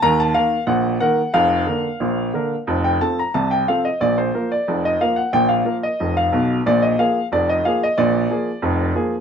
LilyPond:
<<
  \new Staff \with { instrumentName = "Upright piano" } { \time 2/4 \key bes \major \tempo 4 = 91 bes''16 a''16 f''8 ges''8 ges''8 | f''2~ | f''16 g''16 a''16 bes''16 a''16 g''16 f''16 ees''16 | d''16 c''8 d''8 ees''16 f''16 ges''16 |
g''16 f''8 ees''8 f''8. | d''16 ees''16 f''8 d''16 ees''16 f''16 ees''16 | d''4. r8 | }
  \new Staff \with { instrumentName = "Upright piano" } { \clef bass \time 2/4 \key bes \major <ees, ees>8 <ees bes bes'>8 <bes,, bes,>8 <ees bes bes'>8 | <f,, f,>8 <d bes bes'>8 <bes,, bes,>8 <d bes bes'>8 | <f,, f,>8 <f c' a'>8 <c, c>8 <f c' a'>8 | <bes,, bes,>8 <f bes bes'>8 <f,, f,>8 <f bes bes'>8 |
<bes,, bes,>8 <f bes bes'>8 <f,, f,>8 <ces, ces>8 | <bes,, bes,>8 <f bes aes'>8 <f,, f,>8 <f bes aes'>8 | <bes,, bes,>8 <f bes aes'>8 <f,, f,>8 <f bes aes'>8 | }
>>